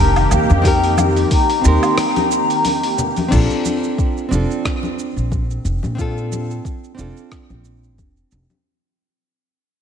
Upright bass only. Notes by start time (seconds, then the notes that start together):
Already playing: F1
0.31 D#2
0.50 F2
1.65 D#2
3.32 A#1
4.31 F1
5.16 A#1
5.65 F1
5.84 A#2
6.98 F1
7.50 A#1
7.99 F1
8.32 F1